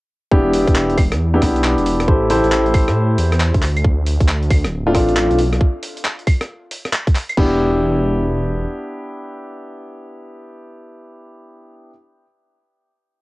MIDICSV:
0, 0, Header, 1, 4, 480
1, 0, Start_track
1, 0, Key_signature, 1, "minor"
1, 0, Tempo, 441176
1, 343, Time_signature, 4, 2, 24, 8
1, 14381, End_track
2, 0, Start_track
2, 0, Title_t, "Grand piano"
2, 0, Program_c, 0, 0
2, 344, Note_on_c, 0, 62, 89
2, 344, Note_on_c, 0, 64, 86
2, 344, Note_on_c, 0, 67, 105
2, 345, Note_on_c, 0, 59, 91
2, 1063, Note_off_c, 0, 62, 0
2, 1063, Note_off_c, 0, 64, 0
2, 1064, Note_off_c, 0, 59, 0
2, 1064, Note_off_c, 0, 67, 0
2, 1456, Note_on_c, 0, 59, 90
2, 1456, Note_on_c, 0, 62, 83
2, 1456, Note_on_c, 0, 67, 99
2, 1457, Note_on_c, 0, 64, 82
2, 1527, Note_off_c, 0, 59, 0
2, 1527, Note_off_c, 0, 64, 0
2, 1527, Note_off_c, 0, 67, 0
2, 1528, Note_off_c, 0, 62, 0
2, 1543, Note_on_c, 0, 59, 83
2, 1543, Note_on_c, 0, 64, 74
2, 1544, Note_on_c, 0, 62, 79
2, 2242, Note_off_c, 0, 59, 0
2, 2242, Note_off_c, 0, 62, 0
2, 2242, Note_off_c, 0, 64, 0
2, 2263, Note_on_c, 0, 64, 73
2, 2263, Note_on_c, 0, 67, 72
2, 2263, Note_on_c, 0, 72, 86
2, 2264, Note_on_c, 0, 69, 68
2, 2482, Note_off_c, 0, 64, 0
2, 2482, Note_off_c, 0, 67, 0
2, 2482, Note_off_c, 0, 69, 0
2, 2482, Note_off_c, 0, 72, 0
2, 2503, Note_on_c, 0, 67, 86
2, 2504, Note_on_c, 0, 64, 90
2, 2504, Note_on_c, 0, 69, 86
2, 2504, Note_on_c, 0, 72, 100
2, 3933, Note_off_c, 0, 64, 0
2, 3933, Note_off_c, 0, 67, 0
2, 3933, Note_off_c, 0, 69, 0
2, 3933, Note_off_c, 0, 72, 0
2, 5294, Note_on_c, 0, 65, 105
2, 5295, Note_on_c, 0, 57, 90
2, 5295, Note_on_c, 0, 60, 82
2, 5295, Note_on_c, 0, 62, 81
2, 5365, Note_off_c, 0, 57, 0
2, 5365, Note_off_c, 0, 60, 0
2, 5365, Note_off_c, 0, 62, 0
2, 5366, Note_off_c, 0, 65, 0
2, 5381, Note_on_c, 0, 60, 77
2, 5381, Note_on_c, 0, 62, 79
2, 5382, Note_on_c, 0, 57, 87
2, 5382, Note_on_c, 0, 65, 95
2, 5851, Note_off_c, 0, 60, 0
2, 5851, Note_off_c, 0, 62, 0
2, 5852, Note_off_c, 0, 57, 0
2, 5852, Note_off_c, 0, 65, 0
2, 8022, Note_on_c, 0, 64, 74
2, 8023, Note_on_c, 0, 59, 79
2, 8023, Note_on_c, 0, 62, 74
2, 8023, Note_on_c, 0, 67, 94
2, 12942, Note_off_c, 0, 59, 0
2, 12942, Note_off_c, 0, 62, 0
2, 12942, Note_off_c, 0, 64, 0
2, 12942, Note_off_c, 0, 67, 0
2, 14381, End_track
3, 0, Start_track
3, 0, Title_t, "Detuned saw bass"
3, 0, Program_c, 1, 39
3, 343, Note_on_c, 1, 28, 99
3, 707, Note_off_c, 1, 28, 0
3, 735, Note_on_c, 1, 28, 88
3, 1216, Note_on_c, 1, 40, 83
3, 1232, Note_off_c, 1, 28, 0
3, 1527, Note_off_c, 1, 40, 0
3, 1544, Note_on_c, 1, 35, 102
3, 1907, Note_off_c, 1, 35, 0
3, 1935, Note_on_c, 1, 28, 97
3, 2246, Note_off_c, 1, 28, 0
3, 2263, Note_on_c, 1, 33, 97
3, 2627, Note_off_c, 1, 33, 0
3, 2655, Note_on_c, 1, 33, 91
3, 3137, Note_on_c, 1, 45, 86
3, 3153, Note_off_c, 1, 33, 0
3, 3447, Note_off_c, 1, 45, 0
3, 3463, Note_on_c, 1, 40, 101
3, 3827, Note_off_c, 1, 40, 0
3, 3855, Note_on_c, 1, 38, 99
3, 4166, Note_off_c, 1, 38, 0
3, 4182, Note_on_c, 1, 38, 97
3, 4547, Note_off_c, 1, 38, 0
3, 4575, Note_on_c, 1, 38, 92
3, 5057, Note_on_c, 1, 26, 84
3, 5073, Note_off_c, 1, 38, 0
3, 5367, Note_off_c, 1, 26, 0
3, 5382, Note_on_c, 1, 33, 101
3, 5746, Note_off_c, 1, 33, 0
3, 5776, Note_on_c, 1, 35, 103
3, 6087, Note_off_c, 1, 35, 0
3, 8023, Note_on_c, 1, 28, 92
3, 9419, Note_off_c, 1, 28, 0
3, 14381, End_track
4, 0, Start_track
4, 0, Title_t, "Drums"
4, 343, Note_on_c, 9, 36, 118
4, 452, Note_off_c, 9, 36, 0
4, 582, Note_on_c, 9, 46, 108
4, 691, Note_off_c, 9, 46, 0
4, 734, Note_on_c, 9, 42, 66
4, 735, Note_on_c, 9, 36, 100
4, 822, Note_on_c, 9, 39, 117
4, 843, Note_off_c, 9, 42, 0
4, 844, Note_off_c, 9, 36, 0
4, 931, Note_off_c, 9, 39, 0
4, 976, Note_on_c, 9, 42, 39
4, 1062, Note_on_c, 9, 46, 99
4, 1062, Note_on_c, 9, 75, 75
4, 1063, Note_on_c, 9, 36, 107
4, 1085, Note_off_c, 9, 42, 0
4, 1171, Note_off_c, 9, 36, 0
4, 1171, Note_off_c, 9, 46, 0
4, 1171, Note_off_c, 9, 75, 0
4, 1216, Note_on_c, 9, 37, 74
4, 1216, Note_on_c, 9, 42, 65
4, 1325, Note_off_c, 9, 37, 0
4, 1325, Note_off_c, 9, 42, 0
4, 1543, Note_on_c, 9, 36, 58
4, 1543, Note_on_c, 9, 37, 70
4, 1543, Note_on_c, 9, 46, 110
4, 1652, Note_off_c, 9, 36, 0
4, 1652, Note_off_c, 9, 37, 0
4, 1652, Note_off_c, 9, 46, 0
4, 1697, Note_on_c, 9, 42, 62
4, 1784, Note_on_c, 9, 39, 125
4, 1806, Note_off_c, 9, 42, 0
4, 1893, Note_off_c, 9, 39, 0
4, 1937, Note_on_c, 9, 42, 52
4, 2024, Note_on_c, 9, 46, 101
4, 2045, Note_off_c, 9, 42, 0
4, 2132, Note_off_c, 9, 46, 0
4, 2176, Note_on_c, 9, 37, 59
4, 2176, Note_on_c, 9, 42, 64
4, 2262, Note_on_c, 9, 36, 122
4, 2285, Note_off_c, 9, 37, 0
4, 2285, Note_off_c, 9, 42, 0
4, 2371, Note_off_c, 9, 36, 0
4, 2502, Note_on_c, 9, 46, 111
4, 2610, Note_off_c, 9, 46, 0
4, 2654, Note_on_c, 9, 42, 63
4, 2742, Note_on_c, 9, 39, 125
4, 2763, Note_off_c, 9, 42, 0
4, 2851, Note_off_c, 9, 39, 0
4, 2895, Note_on_c, 9, 42, 37
4, 2980, Note_on_c, 9, 46, 98
4, 2980, Note_on_c, 9, 75, 75
4, 2983, Note_on_c, 9, 36, 114
4, 3003, Note_off_c, 9, 42, 0
4, 3089, Note_off_c, 9, 46, 0
4, 3089, Note_off_c, 9, 75, 0
4, 3091, Note_off_c, 9, 36, 0
4, 3133, Note_on_c, 9, 37, 71
4, 3133, Note_on_c, 9, 42, 63
4, 3242, Note_off_c, 9, 37, 0
4, 3242, Note_off_c, 9, 42, 0
4, 3461, Note_on_c, 9, 46, 105
4, 3570, Note_off_c, 9, 46, 0
4, 3614, Note_on_c, 9, 37, 68
4, 3614, Note_on_c, 9, 42, 62
4, 3702, Note_on_c, 9, 39, 127
4, 3723, Note_off_c, 9, 37, 0
4, 3723, Note_off_c, 9, 42, 0
4, 3811, Note_off_c, 9, 39, 0
4, 3855, Note_on_c, 9, 42, 51
4, 3856, Note_on_c, 9, 36, 109
4, 3943, Note_on_c, 9, 39, 66
4, 3943, Note_on_c, 9, 46, 99
4, 3964, Note_off_c, 9, 36, 0
4, 3964, Note_off_c, 9, 42, 0
4, 4052, Note_off_c, 9, 39, 0
4, 4052, Note_off_c, 9, 46, 0
4, 4097, Note_on_c, 9, 42, 67
4, 4097, Note_on_c, 9, 75, 77
4, 4182, Note_on_c, 9, 36, 122
4, 4206, Note_off_c, 9, 42, 0
4, 4206, Note_off_c, 9, 75, 0
4, 4291, Note_off_c, 9, 36, 0
4, 4422, Note_on_c, 9, 46, 101
4, 4531, Note_off_c, 9, 46, 0
4, 4575, Note_on_c, 9, 36, 104
4, 4575, Note_on_c, 9, 42, 63
4, 4662, Note_on_c, 9, 39, 127
4, 4684, Note_off_c, 9, 36, 0
4, 4684, Note_off_c, 9, 42, 0
4, 4770, Note_off_c, 9, 39, 0
4, 4815, Note_on_c, 9, 42, 37
4, 4901, Note_on_c, 9, 46, 96
4, 4901, Note_on_c, 9, 75, 78
4, 4902, Note_on_c, 9, 36, 113
4, 4924, Note_off_c, 9, 42, 0
4, 5010, Note_off_c, 9, 46, 0
4, 5010, Note_off_c, 9, 75, 0
4, 5011, Note_off_c, 9, 36, 0
4, 5054, Note_on_c, 9, 37, 69
4, 5054, Note_on_c, 9, 42, 63
4, 5163, Note_off_c, 9, 37, 0
4, 5163, Note_off_c, 9, 42, 0
4, 5382, Note_on_c, 9, 36, 66
4, 5382, Note_on_c, 9, 37, 69
4, 5382, Note_on_c, 9, 46, 104
4, 5490, Note_off_c, 9, 36, 0
4, 5491, Note_off_c, 9, 37, 0
4, 5491, Note_off_c, 9, 46, 0
4, 5534, Note_on_c, 9, 42, 61
4, 5622, Note_on_c, 9, 39, 127
4, 5643, Note_off_c, 9, 42, 0
4, 5731, Note_off_c, 9, 39, 0
4, 5775, Note_on_c, 9, 42, 50
4, 5860, Note_on_c, 9, 46, 93
4, 5884, Note_off_c, 9, 42, 0
4, 5969, Note_off_c, 9, 46, 0
4, 6013, Note_on_c, 9, 37, 58
4, 6013, Note_on_c, 9, 42, 63
4, 6101, Note_on_c, 9, 36, 118
4, 6122, Note_off_c, 9, 37, 0
4, 6122, Note_off_c, 9, 42, 0
4, 6210, Note_off_c, 9, 36, 0
4, 6340, Note_on_c, 9, 46, 101
4, 6449, Note_off_c, 9, 46, 0
4, 6494, Note_on_c, 9, 42, 64
4, 6580, Note_on_c, 9, 39, 123
4, 6603, Note_off_c, 9, 42, 0
4, 6688, Note_off_c, 9, 39, 0
4, 6734, Note_on_c, 9, 42, 36
4, 6821, Note_on_c, 9, 46, 93
4, 6821, Note_on_c, 9, 75, 86
4, 6822, Note_on_c, 9, 36, 109
4, 6843, Note_off_c, 9, 42, 0
4, 6930, Note_off_c, 9, 46, 0
4, 6930, Note_off_c, 9, 75, 0
4, 6931, Note_off_c, 9, 36, 0
4, 6973, Note_on_c, 9, 37, 69
4, 6973, Note_on_c, 9, 42, 64
4, 7082, Note_off_c, 9, 37, 0
4, 7082, Note_off_c, 9, 42, 0
4, 7302, Note_on_c, 9, 46, 100
4, 7411, Note_off_c, 9, 46, 0
4, 7455, Note_on_c, 9, 37, 62
4, 7455, Note_on_c, 9, 42, 64
4, 7543, Note_on_c, 9, 39, 127
4, 7564, Note_off_c, 9, 37, 0
4, 7564, Note_off_c, 9, 42, 0
4, 7652, Note_off_c, 9, 39, 0
4, 7695, Note_on_c, 9, 36, 112
4, 7697, Note_on_c, 9, 42, 51
4, 7784, Note_on_c, 9, 39, 64
4, 7784, Note_on_c, 9, 46, 98
4, 7804, Note_off_c, 9, 36, 0
4, 7805, Note_off_c, 9, 42, 0
4, 7892, Note_off_c, 9, 39, 0
4, 7892, Note_off_c, 9, 46, 0
4, 7935, Note_on_c, 9, 42, 65
4, 7935, Note_on_c, 9, 75, 81
4, 8022, Note_on_c, 9, 36, 108
4, 8023, Note_on_c, 9, 49, 91
4, 8044, Note_off_c, 9, 42, 0
4, 8044, Note_off_c, 9, 75, 0
4, 8131, Note_off_c, 9, 36, 0
4, 8132, Note_off_c, 9, 49, 0
4, 14381, End_track
0, 0, End_of_file